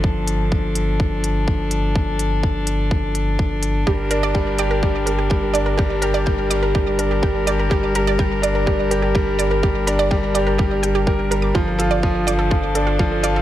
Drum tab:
HH |-x-x-x-x|-x-x-x-x|-x-x-x-x|-x-x-x-x|
BD |o-o-o-o-|o-o-o-o-|o-o-o-o-|o-o-o-o-|

HH |-x-x-x-x|-x-x-x-x|-x-x-x-x|
BD |o-o-o-o-|o-o-o-o-|o-o-o-o-|